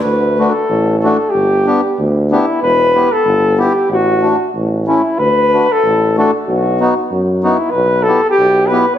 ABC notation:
X:1
M:2/4
L:1/16
Q:"Swing" 1/4=93
K:D
V:1 name="Flugelhorn"
B3 A3 A2 | G4 z2 E2 | B3 A3 G2 | F4 z2 E2 |
B3 A3 A2 | F4 z2 E2 | B2 A2 G2 B2 |]
V:2 name="Accordion"
z2 [A,DF]2 z2 [A,DF]2 | z2 [B,DG]2 z2 [B,DG]2 | z2 [B,EG]2 z2 [B,EG]2 | z2 [A,DF]2 z2 [A,CE]2 |
z2 [A,DF]2 z2 [A,DF]2 | z2 [B,^DF]2 z2 [B,DF]2 | z2 [B,EG]2 z2 [B,EG]2 |]
V:3 name="Tuba" clef=bass
D,,4 A,,,4 | G,,,4 D,,4 | E,,,4 G,,,4 | A,,,4 A,,,4 |
D,,4 A,,,4 | B,,,4 F,,4 | B,,,4 B,,,4 |]